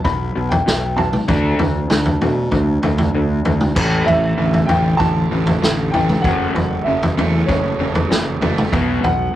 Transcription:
0.04 fingered electric bass B1, overdriven electric guitar B2 F#3, upright piano B5, kick, floor tom
0.35 fingered electric bass B1, overdriven electric guitar B2 F#3
0.49 upright piano G5, floor tom
0.66 fingered electric bass B1, overdriven electric guitar B2 F#3, snare
0.97 overdriven electric guitar B2 F#3, upright piano A5, floor tom
1.13 mid tom
1.28 fingered electric bass D2, overdriven electric guitar D3 A3 D4, kick, floor tom
1.59 fingered electric bass D2, overdriven electric guitar D3 A3, floor tom
1.90 fingered electric bass D2, overdriven electric guitar D3 A3, snare, mid tom
2.05 floor tom
2.21 fingered electric bass B2, overdriven electric guitar D3 A3, floor tom
2.51 fingered electric bass D2, overdriven electric guitar D3 A3, kick, floor tom
2.83 fingered electric bass D2, overdriven electric guitar D3 A3, floor tom
2.98 floor tom
3.14 fingered electric bass D2, overdriven electric guitar D3 A3
3.45 fingered electric bass D2, overdriven electric guitar D3 A3, floor tom
3.61 mid tom
3.76 fingered electric bass A1, overdriven electric guitar A2 E3 A3, kick, floor tom, crash
4.06 fingered electric bass A1, overdriven electric guitar A2 E3, upright piano E5, floor tom
4.38 fingered electric bass A1, overdriven electric guitar A2 D3 E3
4.54 floor tom
4.66 fingered electric bass A1, overdriven electric guitar A2 E3 A3, upright piano G5, floor tom
4.97 fingered electric bass A1, overdriven electric guitar A2 D3 E3, upright piano A5, kick, floor tom
5.31 fingered electric bass A1, overdriven electric guitar A2 E3
5.47 floor tom
5.62 fingered electric bass A1, overdriven electric guitar A2 D3 E3, snare
5.91 overdriven electric guitar A2 E3 A3, upright piano G5, floor tom
6.09 mid tom
6.22 fingered electric bass F#1, overdriven electric guitar F#2 C#3, upright piano F#5, kick, floor tom
6.26 overdriven electric guitar F#3
6.55 fingered electric bass F#1, overdriven electric guitar F#2 C#3, floor tom
6.84 fingered electric bass F#1, overdriven electric guitar F#2 C#3, upright piano E5
7.03 floor tom
7.17 fingered electric bass E2, overdriven electric guitar F#2 C#3 A3, floor tom
7.46 fingered electric bass F#1, overdriven electric guitar F#2 C#3, upright piano C#5, kick, floor tom
7.79 fingered electric bass F#1, overdriven electric guitar F#2 C#3 E3
7.95 floor tom
8.10 fingered electric bass F#1, overdriven electric guitar F#2 C#3, snare
8.41 fingered electric bass F#1, overdriven electric guitar F#2 C#3 A3, floor tom
8.58 mid tom
8.72 fingered electric bass B1, overdriven electric guitar B2 F#3 B3, kick, floor tom
9.03 fingered electric bass B1, overdriven electric guitar B2 F#3, upright piano F#5, floor tom

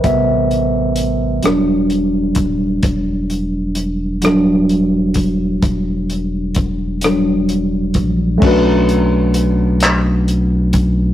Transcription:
Already playing: tine electric piano A#4 B4 C5 D#5 E5
0.04 analog synth bass A1, tine electric piano C3 G3 B3 E5, kick, closed hi-hat
0.51 closed hi-hat
0.96 closed hi-hat
1.43 analog synth bass E1, tine electric piano F#3 G3 D4, cross-stick, closed hi-hat
1.90 closed hi-hat
2.35 analog synth bass D#1, kick, closed hi-hat
2.83 analog synth bass E1, kick, closed hi-hat
3.30 closed hi-hat
3.75 closed hi-hat
4.22 tine electric piano F#3 G3 D4, cross-stick, closed hi-hat
4.69 closed hi-hat
5.14 kick, closed hi-hat
5.62 analog synth bass E1, kick, closed hi-hat
6.10 closed hi-hat
6.55 kick, closed hi-hat
7.01 tine electric piano F#3 G3 D4, cross-stick, closed hi-hat
7.49 closed hi-hat
7.94 analog synth bass A#1, kick, closed hi-hat
8.38 tine electric piano A3 C#4
8.42 analog synth bass B1, tine electric piano D4 F#4, kick, crash
8.47 tine electric piano B4
8.89 closed hi-hat
9.34 closed hi-hat
9.80 clap, closed hi-hat
10.28 closed hi-hat
10.73 kick, closed hi-hat

